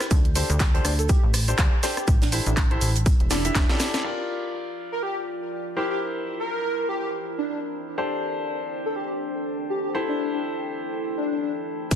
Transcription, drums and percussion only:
0.00 cross-stick medium
0.00 snare medium
0.00 closed hi-hat medium
0.00 cabasa soft
0.11 kick loud
0.11 closed hi-hat medium
0.11 cabasa soft
0.11 shaker medium
0.25 closed hi-hat soft
0.35 open hi-hat medium
0.35 cabasa medium
0.35 shaker medium
0.50 closed hi-hat medium
0.50 cabasa soft
0.60 kick loud
0.60 snare loud
0.60 clap loud
0.60 closed hi-hat medium
0.60 cabasa soft
0.60 shaker medium
0.75 closed hi-hat soft
0.85 cross-stick medium
0.85 open hi-hat medium
0.85 cabasa medium
0.85 shaker medium
0.99 closed hi-hat soft
0.99 cabasa soft
1.09 kick loud
1.09 closed hi-hat medium
1.09 cabasa soft
1.09 shaker medium
1.34 cross-stick medium
1.34 open hi-hat loud
1.34 cabasa medium
1.34 shaker medium
1.48 closed hi-hat medium
1.48 cabasa soft
1.58 kick loud
1.58 clap loud
1.58 closed hi-hat medium
1.58 cabasa soft
1.58 shaker medium
1.83 snare loud
1.83 open hi-hat medium
1.83 cabasa medium
1.83 shaker medium
1.97 cross-stick medium
1.97 closed hi-hat medium
1.97 cabasa soft
2.07 kick loud
2.07 closed hi-hat medium
2.07 cabasa soft
2.07 shaker medium
2.22 snare loud
2.22 closed hi-hat soft
2.22 shaker medium
2.32 open hi-hat medium
2.32 cabasa medium
2.32 shaker medium
2.46 closed hi-hat medium
2.46 cabasa soft
2.57 kick loud
2.57 clap loud
2.57 closed hi-hat medium
2.57 cabasa soft
2.57 shaker medium
2.71 closed hi-hat soft
2.81 open hi-hat medium
2.81 cabasa medium
2.81 shaker medium
2.96 closed hi-hat soft
2.96 cabasa soft
3.06 kick loud
3.06 closed hi-hat medium
3.06 cabasa soft
3.06 shaker medium
3.20 closed hi-hat soft
3.30 snare medium
3.30 open hi-hat loud
3.30 cabasa medium
3.30 shaker medium
3.45 closed hi-hat soft
3.45 closed hi-hat medium
3.45 cabasa soft
3.55 kick loud
3.55 snare medium
3.55 clap loud
3.55 closed hi-hat medium
3.55 cabasa soft
3.55 shaker medium
3.69 snare medium
3.69 closed hi-hat soft
3.79 snare medium
3.79 open hi-hat loud
3.79 cabasa medium
3.79 shaker medium
3.94 snare medium
3.94 closed hi-hat medium
3.94 cabasa soft
4.04 crash medium
11.91 kick loud
11.91 closed hi-hat medium
11.91 crash loud
11.91 cabasa soft
11.91 shaker medium

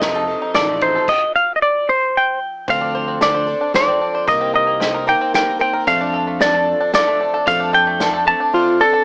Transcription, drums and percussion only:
0.01 snare medium
0.01 ride soft
0.54 snare medium
0.54 ride soft
0.81 ride medium
1.08 kick medium
1.08 crash medium
2.68 kick loud
2.68 closed hi-hat medium
3.21 snare medium
3.21 closed hi-hat medium
3.74 snare medium
3.74 closed hi-hat medium
4.28 kick medium
4.28 closed hi-hat medium
4.81 snare medium
4.81 closed hi-hat medium
5.34 snare medium
5.34 closed hi-hat medium
5.87 kick loud
5.87 closed hi-hat medium
6.40 snare medium
6.40 closed hi-hat medium
6.93 snare medium
6.93 closed hi-hat medium
7.47 kick loud
7.47 closed hi-hat medium
8.00 snare medium
8.00 closed hi-hat medium

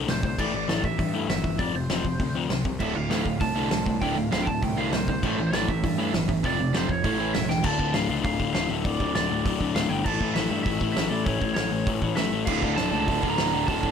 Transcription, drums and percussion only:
0.08 snare loud
0.08 open hi-hat medium
0.23 kick loud
0.39 kick medium
0.39 crash medium
0.69 snare loud
0.69 open hi-hat medium
0.84 kick medium
0.99 kick medium
0.99 open hi-hat medium
1.30 snare loud
1.30 open hi-hat medium
1.44 kick loud
1.59 kick medium
1.59 open hi-hat medium
1.90 snare loud
1.90 open hi-hat medium
2.05 kick medium
2.20 kick loud
2.20 open hi-hat medium
2.50 snare loud
2.50 open hi-hat medium
2.65 kick medium
2.80 kick loud
2.80 crash medium
3.11 snare loud
3.11 open hi-hat medium
3.26 kick medium
3.41 kick loud
3.41 open hi-hat medium
3.71 snare loud
3.71 open hi-hat medium
3.86 kick medium
4.01 kick medium
4.01 open hi-hat medium
4.32 snare loud
4.32 open hi-hat medium
4.47 kick medium
4.63 kick loud
4.63 open hi-hat medium
4.92 snare loud
4.92 open hi-hat medium
5.08 kick medium
5.23 kick medium
5.23 crash medium
5.53 snare loud
5.53 open hi-hat medium
5.69 kick medium
5.84 kick loud
5.84 open hi-hat medium
6.14 snare loud
6.14 open hi-hat medium
6.29 kick medium
6.44 kick medium
6.44 open hi-hat medium
6.74 snare loud
6.74 open hi-hat medium
6.89 kick medium
7.04 kick loud
7.04 open hi-hat medium
7.34 snare loud
7.34 open hi-hat medium
7.50 snare medium
7.64 kick loud
7.64 crash loud
7.79 kick medium
7.94 snare loud
7.94 open hi-hat medium
8.24 kick loud
8.24 open hi-hat medium
8.40 kick medium
8.54 snare loud
8.54 open hi-hat medium
8.85 kick loud
8.85 open hi-hat medium
9.00 kick medium
9.15 snare loud
9.15 open hi-hat medium
9.46 kick loud
9.46 open hi-hat medium
9.61 kick medium
9.76 snare loud
9.76 open hi-hat medium
10.06 kick loud
10.06 crash loud
10.21 kick medium
10.36 snare loud
10.36 open hi-hat medium
10.66 kick loud
10.66 open hi-hat medium
10.81 kick medium
10.96 snare loud
10.96 open hi-hat medium
11.26 kick loud
11.26 open hi-hat medium
11.41 kick medium
11.56 snare loud
11.56 open hi-hat medium
11.87 kick loud
11.87 open hi-hat medium
12.02 kick medium
12.16 snare loud
12.16 open hi-hat medium
12.47 kick loud
12.47 crash loud
12.63 kick medium
12.77 snare loud
12.77 open hi-hat medium
13.08 kick loud
13.08 open hi-hat medium
13.23 kick medium
13.38 snare loud
13.38 open hi-hat medium
13.68 kick loud
13.68 open hi-hat medium
13.83 kick medium

